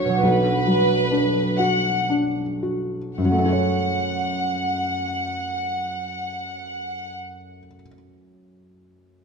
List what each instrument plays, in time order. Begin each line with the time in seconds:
Already playing: felt piano D2 F#3 D4 F#4, harp D3 D4 F#4, violin section C#5
0.05 harp B2
0.09 harp F#3
0.13 harp D4
0.18 harp F#4
0.23 felt piano B1, violin section B4
0.67 felt piano F#3
1.11 felt piano D4
1.59 felt piano F#4, violin section F#5
2.10 felt piano D4
2.63 felt piano F#4
3.17 harp F#2, felt piano F#2, violin section F#5
3.24 felt piano F#3, harp F#3
3.31 felt piano A3, harp C#4
3.38 felt piano C#4, harp A4
3.45 felt piano F#4, harp C#5
3.53 felt piano C#5